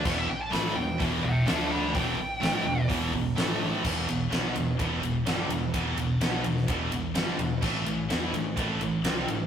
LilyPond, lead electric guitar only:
\new Staff \with { instrumentName = "Lead electric guitar" } { \time 4/4 \key e \minor \tempo 4 = 127 d''16 e''16 g''16 a''16 b''8 g''8 r8 <e'' g''>8 <e'' a''>8 <g'' b''>8 | g''2 r2 | r1 | r1 |
r1 | }